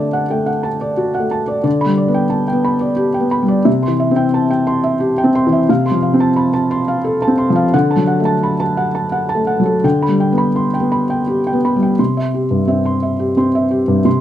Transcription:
0.00 1.60 D3 soft
0.00 0.21 A3 soft
0.00 0.81 D5 soft
0.00 0.63 A5 soft
0.13 0.41 F#5 soft
0.30 0.67 A3 soft
0.30 0.48 G5 soft
0.46 0.74 F#5 soft
0.63 0.91 A5 soft
0.81 1.08 D5 soft
0.97 1.25 F#4 soft
1.14 1.42 F#5 soft
1.20 1.56 A3 soft
1.31 1.58 A5 soft
1.48 1.62 D5 soft
1.64 3.62 D3 medium
1.64 1.91 D5 soft
1.81 2.08 B5 soft
1.86 2.22 G3 soft
1.97 2.25 D5 soft
2.08 2.44 B3 soft
2.14 2.41 G5 soft
2.30 2.48 A5 soft
2.48 2.75 G5 soft
2.52 2.89 B3 soft
2.65 2.92 B5 soft
2.81 3.08 D5 soft
2.96 3.25 G4 soft
3.14 3.42 G5 soft
3.20 3.57 B3 soft
3.31 3.59 B5 soft
3.43 3.66 G3 soft
3.48 3.66 D5 soft
3.65 5.65 C3 medium
3.65 3.93 E5 soft
3.83 4.10 C6 soft
3.88 4.24 E3 soft
4.00 4.27 E5 soft
4.11 4.48 C4 soft
4.16 4.44 G5 medium
4.34 4.51 A5 soft
4.50 4.78 G5 soft
4.67 4.95 C6 soft
4.84 5.11 E5 medium
5.00 5.28 G4 soft
5.18 5.45 G5 soft
5.24 5.60 C4 soft
5.35 5.62 C6 soft
5.47 5.69 E3 soft
5.52 5.69 E5 medium
5.69 7.69 C3 medium
5.69 5.97 F5 medium
5.86 6.13 C6 soft
5.91 6.28 F3 soft
6.02 6.30 F5 soft
6.14 6.50 C4 soft
6.20 6.47 A5 medium
6.36 6.54 B5 soft
6.54 6.81 A5 medium
6.71 6.98 C6 soft
6.88 7.15 F5 medium
7.04 7.32 A4 medium
7.22 7.49 A5 medium
7.28 7.64 C4 soft
7.38 7.66 C6 medium
7.50 7.73 F3 soft
7.56 7.73 F5 medium
7.74 9.80 D3 medium
7.74 8.01 F#5 medium
7.91 8.18 A5 soft
7.96 8.33 F#3 soft
8.07 8.35 F#5 soft
8.20 8.56 A3 soft
8.25 8.52 A5 medium
8.43 8.60 B5 soft
8.60 8.87 A5 medium
8.77 9.05 F#5 medium
8.95 9.23 A5 soft
9.12 9.41 F#5 soft
9.29 9.58 A5 soft
9.35 9.74 A3 soft
9.47 9.76 F#5 soft
9.60 9.84 F#3 soft
9.66 9.84 A4 soft
9.84 11.95 D3 medium
9.84 10.13 G5 soft
10.02 10.31 B5 soft
10.08 10.47 G3 soft
10.20 10.49 G5 soft
10.32 10.71 B3 soft
10.38 10.67 B5 soft
10.56 10.74 C6 soft
10.74 11.03 G5 soft
10.80 11.19 B3 soft
10.92 11.21 B5 soft
11.10 11.39 G5 soft
11.28 11.56 G4 soft
11.47 11.75 G5 soft
11.53 11.90 B3 soft
11.65 11.93 B5 soft
11.76 11.99 G3 soft
11.82 12.00 G5 soft
11.99 14.01 C3 soft
11.99 12.27 C6 soft
12.17 12.45 E5 soft
12.34 12.62 G4 soft
12.51 12.79 G2 soft
12.67 13.35 C4 soft
12.67 12.96 E5 soft
12.86 13.13 C6 soft
13.02 13.30 E5 soft
13.19 13.47 G4 soft
13.37 14.01 C4 soft
13.37 13.65 C6 soft
13.55 13.82 E5 soft
13.71 13.98 G4 soft
13.88 14.05 G2 soft
14.05 14.21 C3 medium
14.05 14.21 C6 soft

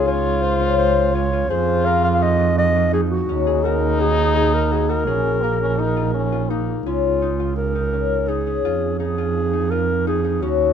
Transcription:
0.00 1.52 C#2 medium
0.00 0.60 C#4 medium
0.00 2.05 D#4 medium
0.00 1.46 F4 medium
0.00 1.50 G#4 medium
0.07 0.43 F4 medium
0.07 0.44 C#5 medium
0.42 1.14 F4 medium
0.42 0.77 C5 medium
0.61 0.79 C#4 medium
0.78 3.28 C#4 medium
0.78 1.15 C5 medium
1.14 1.33 F4 medium
1.14 1.51 C#5 loud
1.33 2.39 F4 medium
1.49 3.30 F2 medium
1.49 2.97 F4 medium
1.49 3.46 G#4 medium
1.49 1.87 C5 loud
1.85 3.98 A#4 medium
1.85 2.03 F5 medium
2.04 2.09 F5 medium
2.14 2.24 F5 medium
2.22 2.93 D#4 medium
2.22 2.58 D#5 loud
2.39 2.75 F4 medium
2.58 2.91 D#5 loud
2.75 3.71 F4 medium
2.93 4.18 D#4 medium
2.93 3.01 G#4 medium
3.11 3.65 F#4 medium
3.29 5.09 D#2 medium
3.29 6.19 C#4 medium
3.29 5.03 D#4 loud
3.47 5.07 G#4 medium
3.64 4.00 F#4 medium
3.64 4.02 A#4 medium
4.00 4.71 F#4 medium
4.00 4.36 G#4 medium
4.18 4.35 D#4 medium
4.36 5.78 D#4 medium
4.36 4.55 G#4 loud
4.54 4.74 A#4 medium
4.72 4.89 F#4 medium
4.72 4.91 G#4 medium
4.89 6.03 F#4 medium
4.89 6.50 A#4 medium
5.07 6.82 A#1 medium
5.07 5.45 C#4 medium
5.07 7.34 G#4 medium
5.43 5.61 A#3 medium
5.43 7.55 A#4 medium
5.61 5.80 C#4 medium
5.79 6.50 D#4 medium
5.79 6.13 D#4 medium
5.97 6.32 F4 medium
6.14 6.51 C#4 medium
6.32 7.39 F4 medium
6.50 6.86 A#3 medium
6.50 7.22 D#4 medium
6.86 8.66 C#2 medium
6.86 7.93 C#4 medium
6.86 7.53 F4 medium
7.22 7.75 D#4 medium
7.40 8.64 F4 medium
7.57 8.30 A#4 medium
7.75 8.28 D#4 medium
7.93 8.46 C#4 medium
8.28 8.99 D#4 medium
8.28 8.99 G#4 medium
8.46 10.42 C#4 medium
8.64 10.44 F2 medium
8.64 9.18 F4 medium
8.99 9.53 D#4 medium
8.99 9.72 G#4 medium
9.18 9.71 F4 medium
9.53 10.07 D#4 medium
9.71 10.73 F4 medium
9.71 10.07 A#4 medium
10.07 10.24 D#4 medium
10.07 10.44 G#4 medium
10.24 10.73 D#4 medium
10.42 10.73 D#2 medium
10.42 10.73 C#4 medium
10.42 10.73 F#4 medium

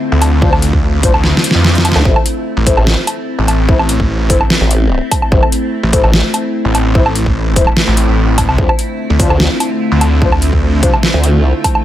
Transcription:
0.00 2.01 D3 medium
0.00 2.01 A3 medium
0.00 2.01 C4 medium
0.00 2.01 E4 medium
0.00 2.01 F4 medium
0.12 0.71 D2 loud
0.22 closed hi-hat medium
0.22 low woodblock medium
0.42 0.50 D4 medium
0.42 0.50 F4 medium
0.42 0.50 C5 loud
0.42 kick loud
0.53 low woodblock medium
0.62 closed hi-hat medium
0.73 1.12 D2 medium
0.73 kick medium
1.03 1.11 D4 loud
1.03 1.11 F4 medium
1.03 1.11 C5 loud
1.03 kick loud
1.03 open hi-hat medium
1.14 1.33 D2 loud
1.14 low woodblock medium
1.24 snare medium
1.37 snare medium
1.44 closed hi-hat medium
1.51 1.94 F2 loud
1.51 snare medium
1.64 snare medium
1.75 snare loud
1.75 closed hi-hat soft
1.85 closed hi-hat medium
1.85 low woodblock medium
1.92 2.04 D2 loud
1.92 snare loud
1.92 low woodblock medium
2.05 2.14 A1 loud
2.05 8.54 A3 medium
2.05 11.85 C4 medium
2.05 11.81 E4 medium
2.05 2.18 E4 medium
2.05 2.18 A4 medium
2.05 2.18 C5 medium
2.05 kick loud
2.16 low woodblock medium
2.26 closed hi-hat medium
2.57 2.76 A1 medium
2.67 2.79 E4 loud
2.67 2.79 A4 medium
2.67 2.79 C5 loud
2.67 kick loud
2.67 open hi-hat loud
2.77 2.96 A1 loud
2.77 low woodblock medium
2.87 snare loud
3.07 closed hi-hat medium
3.07 low woodblock soft
3.39 3.98 A1 loud
3.48 closed hi-hat medium
3.48 low woodblock medium
3.69 3.77 E4 loud
3.69 3.77 A4 medium
3.69 3.77 C5 loud
3.69 kick loud
3.79 low woodblock medium
3.89 closed hi-hat medium
4.00 4.39 A1 loud
4.00 kick medium
4.30 4.38 E4 loud
4.30 4.38 A4 medium
4.30 4.38 C5 loud
4.30 kick loud
4.30 open hi-hat medium
4.41 low woodblock medium
4.50 snare loud
4.61 5.00 A1 loud
4.71 closed hi-hat medium
5.11 kick medium
5.11 closed hi-hat medium
5.11 low woodblock medium
5.22 low woodblock medium
5.32 5.41 A1 loud
5.32 5.45 E4 medium
5.32 5.45 A4 medium
5.32 5.45 C5 medium
5.32 kick loud
5.43 low woodblock medium
5.52 closed hi-hat medium
5.83 6.02 A1 loud
5.93 6.06 E4 loud
5.93 6.06 A4 medium
5.93 6.06 C5 loud
5.93 kick loud
5.93 open hi-hat medium
6.04 6.22 A1 loud
6.04 low woodblock medium
6.13 snare loud
6.34 closed hi-hat medium
6.34 low woodblock medium
6.65 7.25 A1 loud
6.75 closed hi-hat medium
6.75 low woodblock medium
6.95 7.03 E4 medium
6.95 7.03 A4 medium
6.95 7.03 C5 loud
6.95 kick loud
7.06 low woodblock medium
7.15 closed hi-hat medium
7.26 7.65 A1 loud
7.26 kick medium
7.56 7.64 E4 loud
7.56 7.64 A4 medium
7.56 7.64 C5 loud
7.56 kick loud
7.56 open hi-hat medium
7.67 low woodblock medium
7.77 snare loud
7.88 8.06 A1 loud
7.97 closed hi-hat medium
8.08 8.47 A1 loud
8.38 kick medium
8.38 closed hi-hat medium
8.38 low woodblock medium
8.49 8.57 C2 loud
8.49 low woodblock medium
8.58 8.67 D2 loud
8.58 11.85 D3 medium
8.58 11.85 A3 medium
8.58 8.71 D4 medium
8.58 11.85 F4 medium
8.58 8.71 F4 medium
8.58 8.71 C5 medium
8.58 kick loud
8.69 low woodblock medium
8.79 closed hi-hat medium
9.10 9.29 D2 medium
9.20 9.32 D4 loud
9.20 9.32 F4 medium
9.20 9.32 C5 loud
9.20 kick loud
9.20 open hi-hat medium
9.30 9.49 D2 loud
9.30 low woodblock medium
9.40 snare loud
9.60 closed hi-hat medium
9.60 low woodblock medium
9.92 10.51 D2 loud
10.01 closed hi-hat medium
10.01 low woodblock medium
10.22 10.30 D4 loud
10.22 10.30 F4 medium
10.22 10.30 C5 loud
10.22 kick loud
10.32 low woodblock medium
10.42 closed hi-hat medium
10.53 10.92 D2 loud
10.53 kick medium
10.83 10.91 D4 loud
10.83 10.91 F4 medium
10.83 10.91 C5 loud
10.83 kick loud
10.83 open hi-hat medium
10.94 low woodblock medium
11.03 snare loud
11.14 11.53 D2 medium
11.24 closed hi-hat medium
11.64 kick medium
11.64 closed hi-hat medium
11.64 low woodblock medium
11.75 low woodblock medium

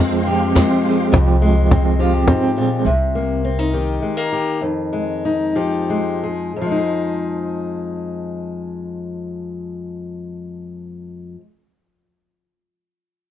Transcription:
0.00 0.52 F2 medium
0.00 1.10 F2 medium
0.00 1.12 F3 medium
0.00 0.55 G#3 medium
0.00 0.84 G#3 medium
0.00 1.12 G#3 medium
0.00 0.56 C4 medium
0.00 1.71 C4 medium
0.00 0.27 G4 medium
0.00 1.12 F5 medium
0.00 1.09 G5 medium
0.00 1.09 C6 medium
0.27 1.10 F3 medium
0.27 1.13 G4 medium
0.27 0.85 G4 medium
0.55 1.41 G#3 medium
0.55 1.70 C4 medium
0.55 cajon bass medium
0.55 snare medium
0.55 cajon slap medium
0.55 ride medium
0.85 1.40 G#3 medium
0.85 1.15 G4 medium
0.85 cajon slap soft
1.12 2.24 C2 medium
1.12 2.27 F2 medium
1.12 2.85 F3 medium
1.12 1.99 G4 medium
1.12 cajon bass medium
1.12 cajon slap medium
1.42 2.55 G#3 medium
1.42 2.85 G#3 medium
1.71 2.27 C4 medium
1.71 3.44 C4 medium
1.71 cajon bass medium
1.71 cajon slap medium
1.99 2.82 F3 medium
1.99 2.14 F4 medium
1.99 2.82 G4 medium
2.14 2.91 G4 medium
2.28 2.57 G#2 medium
2.28 2.91 C4 medium
2.28 cajon bass medium
2.28 cajon slap medium
2.56 2.86 A#2 medium
2.56 2.91 G#3 medium
2.56 cajon slap soft
2.85 3.97 C2 loud
2.85 3.72 C3 medium
3.15 4.02 A#3 medium
3.45 3.59 C4 medium
3.59 4.62 D#4 soft
3.74 5.55 D#3 medium
3.74 4.31 G4 medium
4.02 4.17 G#3 medium
4.17 4.62 A#3 medium
4.32 4.58 G4 medium
4.61 6.55 F2 medium
4.93 5.88 G#3 medium
5.25 6.52 D#4 medium
5.55 6.51 F3 medium
5.55 6.21 G4 medium
5.90 6.65 G#3 medium
6.24 6.52 G#4 medium
6.56 11.35 F2 medium
6.61 11.40 F3 medium
6.66 11.45 G#3 medium
6.71 11.50 D#4 medium
6.76 11.55 G#4 medium

